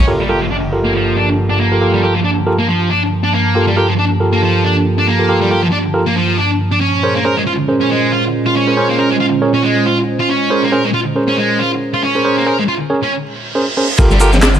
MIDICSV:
0, 0, Header, 1, 8, 480
1, 0, Start_track
1, 0, Key_signature, -2, "minor"
1, 0, Tempo, 434783
1, 81, Time_signature, 4, 2, 24, 8
1, 16115, End_track
2, 0, Start_track
2, 0, Title_t, "Tine electric piano"
2, 0, Program_c, 0, 4
2, 83, Note_on_c, 0, 65, 82
2, 84, Note_on_c, 0, 69, 77
2, 85, Note_on_c, 0, 67, 78
2, 85, Note_on_c, 0, 70, 94
2, 243, Note_off_c, 0, 65, 0
2, 243, Note_off_c, 0, 69, 0
2, 244, Note_off_c, 0, 67, 0
2, 244, Note_off_c, 0, 70, 0
2, 320, Note_on_c, 0, 65, 90
2, 320, Note_on_c, 0, 70, 98
2, 321, Note_on_c, 0, 67, 81
2, 321, Note_on_c, 0, 69, 83
2, 426, Note_off_c, 0, 65, 0
2, 426, Note_off_c, 0, 67, 0
2, 426, Note_off_c, 0, 69, 0
2, 426, Note_off_c, 0, 70, 0
2, 801, Note_on_c, 0, 65, 75
2, 801, Note_on_c, 0, 70, 85
2, 802, Note_on_c, 0, 69, 67
2, 803, Note_on_c, 0, 67, 69
2, 1864, Note_off_c, 0, 65, 0
2, 1864, Note_off_c, 0, 70, 0
2, 1865, Note_off_c, 0, 67, 0
2, 1865, Note_off_c, 0, 69, 0
2, 1897, Note_on_c, 0, 65, 70
2, 1897, Note_on_c, 0, 69, 63
2, 1897, Note_on_c, 0, 70, 73
2, 1898, Note_on_c, 0, 67, 61
2, 1978, Note_off_c, 0, 65, 0
2, 1978, Note_off_c, 0, 67, 0
2, 1978, Note_off_c, 0, 69, 0
2, 1978, Note_off_c, 0, 70, 0
2, 2001, Note_on_c, 0, 69, 70
2, 2002, Note_on_c, 0, 67, 69
2, 2003, Note_on_c, 0, 65, 75
2, 2003, Note_on_c, 0, 70, 84
2, 2216, Note_off_c, 0, 67, 0
2, 2216, Note_off_c, 0, 69, 0
2, 2217, Note_off_c, 0, 65, 0
2, 2217, Note_off_c, 0, 70, 0
2, 2244, Note_on_c, 0, 67, 66
2, 2244, Note_on_c, 0, 69, 64
2, 2244, Note_on_c, 0, 70, 77
2, 2245, Note_on_c, 0, 65, 70
2, 2348, Note_off_c, 0, 65, 0
2, 2348, Note_off_c, 0, 67, 0
2, 2348, Note_off_c, 0, 69, 0
2, 2348, Note_off_c, 0, 70, 0
2, 2721, Note_on_c, 0, 65, 86
2, 2722, Note_on_c, 0, 69, 82
2, 2722, Note_on_c, 0, 70, 98
2, 2723, Note_on_c, 0, 67, 79
2, 2826, Note_off_c, 0, 65, 0
2, 2827, Note_off_c, 0, 67, 0
2, 2827, Note_off_c, 0, 69, 0
2, 2827, Note_off_c, 0, 70, 0
2, 3921, Note_on_c, 0, 65, 88
2, 3921, Note_on_c, 0, 69, 80
2, 3921, Note_on_c, 0, 70, 94
2, 3922, Note_on_c, 0, 67, 79
2, 4082, Note_off_c, 0, 65, 0
2, 4082, Note_off_c, 0, 67, 0
2, 4082, Note_off_c, 0, 69, 0
2, 4082, Note_off_c, 0, 70, 0
2, 4159, Note_on_c, 0, 70, 102
2, 4160, Note_on_c, 0, 67, 83
2, 4161, Note_on_c, 0, 65, 93
2, 4162, Note_on_c, 0, 69, 83
2, 4265, Note_off_c, 0, 70, 0
2, 4266, Note_off_c, 0, 65, 0
2, 4266, Note_off_c, 0, 67, 0
2, 4267, Note_off_c, 0, 69, 0
2, 4640, Note_on_c, 0, 69, 70
2, 4640, Note_on_c, 0, 70, 83
2, 4641, Note_on_c, 0, 65, 75
2, 4641, Note_on_c, 0, 67, 71
2, 5703, Note_off_c, 0, 70, 0
2, 5704, Note_off_c, 0, 65, 0
2, 5704, Note_off_c, 0, 67, 0
2, 5704, Note_off_c, 0, 69, 0
2, 5733, Note_on_c, 0, 67, 59
2, 5734, Note_on_c, 0, 65, 67
2, 5734, Note_on_c, 0, 69, 62
2, 5734, Note_on_c, 0, 70, 76
2, 5816, Note_off_c, 0, 65, 0
2, 5816, Note_off_c, 0, 67, 0
2, 5816, Note_off_c, 0, 69, 0
2, 5817, Note_off_c, 0, 70, 0
2, 5838, Note_on_c, 0, 67, 74
2, 5838, Note_on_c, 0, 70, 88
2, 5839, Note_on_c, 0, 65, 78
2, 5839, Note_on_c, 0, 69, 69
2, 6055, Note_off_c, 0, 65, 0
2, 6055, Note_off_c, 0, 67, 0
2, 6055, Note_off_c, 0, 69, 0
2, 6055, Note_off_c, 0, 70, 0
2, 6078, Note_on_c, 0, 65, 70
2, 6080, Note_on_c, 0, 67, 65
2, 6080, Note_on_c, 0, 69, 67
2, 6080, Note_on_c, 0, 70, 75
2, 6185, Note_off_c, 0, 65, 0
2, 6186, Note_off_c, 0, 67, 0
2, 6186, Note_off_c, 0, 69, 0
2, 6186, Note_off_c, 0, 70, 0
2, 6557, Note_on_c, 0, 69, 81
2, 6558, Note_on_c, 0, 67, 81
2, 6559, Note_on_c, 0, 65, 85
2, 6559, Note_on_c, 0, 70, 101
2, 6664, Note_off_c, 0, 69, 0
2, 6665, Note_off_c, 0, 65, 0
2, 6665, Note_off_c, 0, 67, 0
2, 6665, Note_off_c, 0, 70, 0
2, 7763, Note_on_c, 0, 70, 81
2, 7764, Note_on_c, 0, 68, 79
2, 7764, Note_on_c, 0, 72, 98
2, 7765, Note_on_c, 0, 61, 86
2, 7923, Note_off_c, 0, 68, 0
2, 7923, Note_off_c, 0, 70, 0
2, 7923, Note_off_c, 0, 72, 0
2, 7924, Note_off_c, 0, 61, 0
2, 8002, Note_on_c, 0, 61, 94
2, 8002, Note_on_c, 0, 70, 83
2, 8003, Note_on_c, 0, 68, 84
2, 8003, Note_on_c, 0, 72, 100
2, 8107, Note_off_c, 0, 61, 0
2, 8107, Note_off_c, 0, 68, 0
2, 8107, Note_off_c, 0, 70, 0
2, 8107, Note_off_c, 0, 72, 0
2, 8483, Note_on_c, 0, 68, 70
2, 8485, Note_on_c, 0, 61, 74
2, 8486, Note_on_c, 0, 70, 67
2, 8486, Note_on_c, 0, 72, 85
2, 9545, Note_off_c, 0, 68, 0
2, 9546, Note_off_c, 0, 61, 0
2, 9546, Note_off_c, 0, 70, 0
2, 9546, Note_off_c, 0, 72, 0
2, 9575, Note_on_c, 0, 61, 67
2, 9575, Note_on_c, 0, 72, 76
2, 9576, Note_on_c, 0, 68, 60
2, 9576, Note_on_c, 0, 70, 62
2, 9657, Note_off_c, 0, 61, 0
2, 9657, Note_off_c, 0, 68, 0
2, 9657, Note_off_c, 0, 70, 0
2, 9657, Note_off_c, 0, 72, 0
2, 9683, Note_on_c, 0, 61, 82
2, 9683, Note_on_c, 0, 68, 72
2, 9683, Note_on_c, 0, 72, 89
2, 9684, Note_on_c, 0, 70, 70
2, 9897, Note_off_c, 0, 61, 0
2, 9897, Note_off_c, 0, 68, 0
2, 9897, Note_off_c, 0, 70, 0
2, 9897, Note_off_c, 0, 72, 0
2, 9919, Note_on_c, 0, 70, 64
2, 9919, Note_on_c, 0, 72, 80
2, 9920, Note_on_c, 0, 61, 69
2, 9920, Note_on_c, 0, 68, 65
2, 10025, Note_off_c, 0, 70, 0
2, 10025, Note_off_c, 0, 72, 0
2, 10026, Note_off_c, 0, 61, 0
2, 10026, Note_off_c, 0, 68, 0
2, 10398, Note_on_c, 0, 70, 80
2, 10398, Note_on_c, 0, 73, 100
2, 10399, Note_on_c, 0, 61, 88
2, 10399, Note_on_c, 0, 68, 83
2, 10505, Note_off_c, 0, 61, 0
2, 10505, Note_off_c, 0, 68, 0
2, 10505, Note_off_c, 0, 70, 0
2, 10505, Note_off_c, 0, 73, 0
2, 11594, Note_on_c, 0, 61, 89
2, 11594, Note_on_c, 0, 70, 80
2, 11596, Note_on_c, 0, 68, 80
2, 11596, Note_on_c, 0, 72, 98
2, 11758, Note_off_c, 0, 61, 0
2, 11758, Note_off_c, 0, 70, 0
2, 11759, Note_off_c, 0, 68, 0
2, 11759, Note_off_c, 0, 72, 0
2, 11835, Note_on_c, 0, 70, 85
2, 11837, Note_on_c, 0, 61, 93
2, 11838, Note_on_c, 0, 68, 83
2, 11838, Note_on_c, 0, 72, 105
2, 11943, Note_off_c, 0, 70, 0
2, 11944, Note_off_c, 0, 61, 0
2, 11944, Note_off_c, 0, 68, 0
2, 11944, Note_off_c, 0, 72, 0
2, 12318, Note_on_c, 0, 68, 71
2, 12318, Note_on_c, 0, 70, 71
2, 12319, Note_on_c, 0, 61, 77
2, 12320, Note_on_c, 0, 72, 86
2, 13382, Note_off_c, 0, 68, 0
2, 13382, Note_off_c, 0, 70, 0
2, 13383, Note_off_c, 0, 61, 0
2, 13384, Note_off_c, 0, 72, 0
2, 13415, Note_on_c, 0, 68, 65
2, 13416, Note_on_c, 0, 72, 76
2, 13417, Note_on_c, 0, 61, 68
2, 13418, Note_on_c, 0, 70, 64
2, 13497, Note_off_c, 0, 68, 0
2, 13498, Note_off_c, 0, 61, 0
2, 13498, Note_off_c, 0, 70, 0
2, 13498, Note_off_c, 0, 72, 0
2, 13519, Note_on_c, 0, 61, 78
2, 13519, Note_on_c, 0, 72, 91
2, 13520, Note_on_c, 0, 68, 74
2, 13520, Note_on_c, 0, 70, 75
2, 13735, Note_off_c, 0, 61, 0
2, 13735, Note_off_c, 0, 70, 0
2, 13735, Note_off_c, 0, 72, 0
2, 13736, Note_off_c, 0, 68, 0
2, 13761, Note_on_c, 0, 61, 73
2, 13762, Note_on_c, 0, 70, 69
2, 13763, Note_on_c, 0, 68, 67
2, 13763, Note_on_c, 0, 72, 82
2, 13866, Note_off_c, 0, 61, 0
2, 13867, Note_off_c, 0, 68, 0
2, 13867, Note_off_c, 0, 70, 0
2, 13867, Note_off_c, 0, 72, 0
2, 14240, Note_on_c, 0, 61, 91
2, 14240, Note_on_c, 0, 70, 82
2, 14240, Note_on_c, 0, 73, 98
2, 14241, Note_on_c, 0, 68, 83
2, 14346, Note_off_c, 0, 61, 0
2, 14346, Note_off_c, 0, 68, 0
2, 14346, Note_off_c, 0, 70, 0
2, 14346, Note_off_c, 0, 73, 0
2, 14961, Note_on_c, 0, 68, 82
2, 14961, Note_on_c, 0, 70, 82
2, 14961, Note_on_c, 0, 72, 100
2, 14962, Note_on_c, 0, 61, 86
2, 15066, Note_off_c, 0, 68, 0
2, 15066, Note_off_c, 0, 70, 0
2, 15066, Note_off_c, 0, 72, 0
2, 15067, Note_off_c, 0, 61, 0
2, 15202, Note_on_c, 0, 72, 92
2, 15203, Note_on_c, 0, 70, 76
2, 15204, Note_on_c, 0, 61, 82
2, 15204, Note_on_c, 0, 68, 76
2, 15307, Note_off_c, 0, 68, 0
2, 15307, Note_off_c, 0, 70, 0
2, 15307, Note_off_c, 0, 72, 0
2, 15308, Note_off_c, 0, 61, 0
2, 15439, Note_on_c, 0, 65, 93
2, 15439, Note_on_c, 0, 69, 87
2, 15440, Note_on_c, 0, 67, 87
2, 15440, Note_on_c, 0, 70, 100
2, 15601, Note_off_c, 0, 65, 0
2, 15601, Note_off_c, 0, 67, 0
2, 15601, Note_off_c, 0, 69, 0
2, 15601, Note_off_c, 0, 70, 0
2, 15680, Note_on_c, 0, 65, 98
2, 15682, Note_on_c, 0, 67, 92
2, 15682, Note_on_c, 0, 69, 92
2, 15682, Note_on_c, 0, 70, 113
2, 15786, Note_off_c, 0, 65, 0
2, 15787, Note_off_c, 0, 67, 0
2, 15787, Note_off_c, 0, 69, 0
2, 15787, Note_off_c, 0, 70, 0
2, 16115, End_track
3, 0, Start_track
3, 0, Title_t, "Distorted electric guitar"
3, 0, Program_c, 1, 30
3, 221, Note_on_c, 1, 55, 70
3, 313, Note_off_c, 1, 55, 0
3, 321, Note_on_c, 1, 67, 65
3, 450, Note_off_c, 1, 67, 0
3, 457, Note_on_c, 1, 53, 90
3, 503, Note_off_c, 1, 53, 0
3, 564, Note_on_c, 1, 62, 89
3, 622, Note_off_c, 1, 62, 0
3, 934, Note_on_c, 1, 58, 67
3, 1029, Note_off_c, 1, 58, 0
3, 1039, Note_on_c, 1, 53, 73
3, 1270, Note_off_c, 1, 53, 0
3, 1283, Note_on_c, 1, 62, 69
3, 1411, Note_off_c, 1, 62, 0
3, 1653, Note_on_c, 1, 62, 67
3, 1749, Note_off_c, 1, 62, 0
3, 1759, Note_on_c, 1, 58, 73
3, 2122, Note_off_c, 1, 58, 0
3, 2139, Note_on_c, 1, 55, 69
3, 2232, Note_off_c, 1, 55, 0
3, 2236, Note_on_c, 1, 67, 68
3, 2367, Note_off_c, 1, 67, 0
3, 2377, Note_on_c, 1, 53, 94
3, 2423, Note_off_c, 1, 53, 0
3, 2480, Note_on_c, 1, 62, 92
3, 2540, Note_off_c, 1, 62, 0
3, 2855, Note_on_c, 1, 58, 68
3, 2950, Note_off_c, 1, 58, 0
3, 2960, Note_on_c, 1, 53, 76
3, 3190, Note_off_c, 1, 53, 0
3, 3196, Note_on_c, 1, 62, 71
3, 3327, Note_off_c, 1, 62, 0
3, 3568, Note_on_c, 1, 62, 71
3, 3666, Note_off_c, 1, 62, 0
3, 3680, Note_on_c, 1, 58, 69
3, 4042, Note_off_c, 1, 58, 0
3, 4052, Note_on_c, 1, 55, 68
3, 4148, Note_off_c, 1, 55, 0
3, 4163, Note_on_c, 1, 67, 68
3, 4291, Note_off_c, 1, 67, 0
3, 4294, Note_on_c, 1, 53, 94
3, 4341, Note_off_c, 1, 53, 0
3, 4402, Note_on_c, 1, 62, 92
3, 4461, Note_off_c, 1, 62, 0
3, 4777, Note_on_c, 1, 58, 71
3, 4871, Note_off_c, 1, 58, 0
3, 4881, Note_on_c, 1, 53, 75
3, 5111, Note_off_c, 1, 53, 0
3, 5122, Note_on_c, 1, 62, 70
3, 5250, Note_off_c, 1, 62, 0
3, 5498, Note_on_c, 1, 62, 67
3, 5591, Note_off_c, 1, 62, 0
3, 5598, Note_on_c, 1, 58, 74
3, 5961, Note_off_c, 1, 58, 0
3, 5973, Note_on_c, 1, 55, 68
3, 6069, Note_off_c, 1, 55, 0
3, 6077, Note_on_c, 1, 67, 69
3, 6208, Note_off_c, 1, 67, 0
3, 6210, Note_on_c, 1, 53, 96
3, 6259, Note_off_c, 1, 53, 0
3, 6313, Note_on_c, 1, 62, 90
3, 6377, Note_off_c, 1, 62, 0
3, 6693, Note_on_c, 1, 58, 68
3, 6789, Note_off_c, 1, 58, 0
3, 6794, Note_on_c, 1, 53, 72
3, 7027, Note_off_c, 1, 53, 0
3, 7037, Note_on_c, 1, 62, 71
3, 7168, Note_off_c, 1, 62, 0
3, 7413, Note_on_c, 1, 62, 68
3, 7509, Note_off_c, 1, 62, 0
3, 7516, Note_on_c, 1, 61, 73
3, 7880, Note_off_c, 1, 61, 0
3, 7891, Note_on_c, 1, 58, 69
3, 7988, Note_off_c, 1, 58, 0
3, 8002, Note_on_c, 1, 70, 69
3, 8130, Note_off_c, 1, 70, 0
3, 8138, Note_on_c, 1, 56, 96
3, 8183, Note_off_c, 1, 56, 0
3, 8244, Note_on_c, 1, 65, 92
3, 8302, Note_off_c, 1, 65, 0
3, 8618, Note_on_c, 1, 61, 65
3, 8711, Note_off_c, 1, 61, 0
3, 8726, Note_on_c, 1, 56, 72
3, 8953, Note_off_c, 1, 56, 0
3, 8967, Note_on_c, 1, 65, 72
3, 9093, Note_off_c, 1, 65, 0
3, 9341, Note_on_c, 1, 65, 68
3, 9433, Note_off_c, 1, 65, 0
3, 9444, Note_on_c, 1, 61, 73
3, 9804, Note_off_c, 1, 61, 0
3, 9817, Note_on_c, 1, 58, 72
3, 9911, Note_off_c, 1, 58, 0
3, 9922, Note_on_c, 1, 70, 70
3, 10050, Note_off_c, 1, 70, 0
3, 10057, Note_on_c, 1, 56, 98
3, 10103, Note_off_c, 1, 56, 0
3, 10162, Note_on_c, 1, 65, 93
3, 10221, Note_off_c, 1, 65, 0
3, 10533, Note_on_c, 1, 61, 70
3, 10629, Note_off_c, 1, 61, 0
3, 10641, Note_on_c, 1, 56, 79
3, 10871, Note_off_c, 1, 56, 0
3, 10879, Note_on_c, 1, 65, 71
3, 11009, Note_off_c, 1, 65, 0
3, 11253, Note_on_c, 1, 65, 72
3, 11349, Note_off_c, 1, 65, 0
3, 11362, Note_on_c, 1, 61, 73
3, 11723, Note_off_c, 1, 61, 0
3, 11737, Note_on_c, 1, 58, 70
3, 11831, Note_off_c, 1, 58, 0
3, 11837, Note_on_c, 1, 70, 73
3, 11968, Note_off_c, 1, 70, 0
3, 11975, Note_on_c, 1, 56, 96
3, 12022, Note_off_c, 1, 56, 0
3, 12076, Note_on_c, 1, 65, 93
3, 12138, Note_off_c, 1, 65, 0
3, 12455, Note_on_c, 1, 61, 66
3, 12550, Note_off_c, 1, 61, 0
3, 12558, Note_on_c, 1, 56, 76
3, 12789, Note_off_c, 1, 56, 0
3, 12797, Note_on_c, 1, 65, 72
3, 12928, Note_off_c, 1, 65, 0
3, 13179, Note_on_c, 1, 65, 73
3, 13272, Note_off_c, 1, 65, 0
3, 13279, Note_on_c, 1, 61, 74
3, 13642, Note_off_c, 1, 61, 0
3, 13654, Note_on_c, 1, 58, 72
3, 13750, Note_off_c, 1, 58, 0
3, 13762, Note_on_c, 1, 70, 72
3, 13890, Note_off_c, 1, 70, 0
3, 13900, Note_on_c, 1, 56, 100
3, 13944, Note_off_c, 1, 56, 0
3, 14003, Note_on_c, 1, 65, 92
3, 14062, Note_off_c, 1, 65, 0
3, 14383, Note_on_c, 1, 61, 68
3, 14474, Note_off_c, 1, 61, 0
3, 15579, Note_on_c, 1, 55, 77
3, 15672, Note_off_c, 1, 55, 0
3, 15681, Note_on_c, 1, 67, 75
3, 15810, Note_off_c, 1, 67, 0
3, 15815, Note_on_c, 1, 53, 102
3, 15862, Note_off_c, 1, 53, 0
3, 15921, Note_on_c, 1, 62, 101
3, 15981, Note_off_c, 1, 62, 0
3, 16115, End_track
4, 0, Start_track
4, 0, Title_t, "Ambient pad"
4, 0, Program_c, 2, 92
4, 83, Note_on_c, 2, 81, 88
4, 86, Note_on_c, 2, 58, 74
4, 87, Note_on_c, 2, 53, 72
4, 88, Note_on_c, 2, 43, 79
4, 7478, Note_off_c, 2, 81, 0
4, 7479, Note_off_c, 2, 58, 0
4, 7480, Note_off_c, 2, 43, 0
4, 7480, Note_off_c, 2, 53, 0
4, 7512, Note_on_c, 2, 61, 70
4, 7513, Note_on_c, 2, 72, 85
4, 7515, Note_on_c, 2, 56, 72
4, 7517, Note_on_c, 2, 46, 77
4, 14432, Note_off_c, 2, 61, 0
4, 14433, Note_off_c, 2, 72, 0
4, 14434, Note_off_c, 2, 56, 0
4, 14435, Note_off_c, 2, 46, 0
4, 15445, Note_on_c, 2, 55, 88
4, 15446, Note_on_c, 2, 58, 94
4, 15447, Note_on_c, 2, 65, 77
4, 15447, Note_on_c, 2, 81, 80
4, 16115, Note_off_c, 2, 55, 0
4, 16115, Note_off_c, 2, 58, 0
4, 16115, Note_off_c, 2, 65, 0
4, 16115, Note_off_c, 2, 81, 0
4, 16115, End_track
5, 0, Start_track
5, 0, Title_t, "808-style bass"
5, 0, Program_c, 3, 38
5, 15442, Note_on_c, 3, 31, 100
5, 16115, Note_off_c, 3, 31, 0
5, 16115, End_track
6, 0, Start_track
6, 0, Title_t, "Impact"
6, 0, Program_c, 4, 103
6, 83, Note_on_c, 4, 60, 67
6, 2002, Note_off_c, 4, 60, 0
6, 16115, End_track
7, 0, Start_track
7, 0, Title_t, "Reverse cymbal"
7, 0, Program_c, 5, 119
7, 14482, Note_on_c, 5, 60, 74
7, 15441, Note_off_c, 5, 60, 0
7, 16115, End_track
8, 0, Start_track
8, 0, Title_t, "Drums"
8, 15434, Note_on_c, 9, 51, 93
8, 15439, Note_on_c, 9, 82, 43
8, 15441, Note_on_c, 9, 36, 120
8, 15446, Note_on_c, 9, 49, 88
8, 15544, Note_off_c, 9, 51, 0
8, 15550, Note_off_c, 9, 82, 0
8, 15551, Note_off_c, 9, 36, 0
8, 15557, Note_off_c, 9, 49, 0
8, 15574, Note_on_c, 9, 82, 32
8, 15678, Note_off_c, 9, 82, 0
8, 15678, Note_on_c, 9, 82, 76
8, 15686, Note_on_c, 9, 51, 75
8, 15788, Note_off_c, 9, 82, 0
8, 15796, Note_off_c, 9, 51, 0
8, 15817, Note_on_c, 9, 82, 33
8, 15829, Note_on_c, 9, 38, 50
8, 15923, Note_off_c, 9, 82, 0
8, 15923, Note_on_c, 9, 39, 103
8, 15923, Note_on_c, 9, 51, 89
8, 15923, Note_on_c, 9, 82, 44
8, 15928, Note_off_c, 9, 38, 0
8, 15928, Note_on_c, 9, 38, 124
8, 16033, Note_off_c, 9, 39, 0
8, 16033, Note_off_c, 9, 51, 0
8, 16033, Note_off_c, 9, 82, 0
8, 16039, Note_off_c, 9, 38, 0
8, 16056, Note_on_c, 9, 82, 31
8, 16115, Note_off_c, 9, 82, 0
8, 16115, End_track
0, 0, End_of_file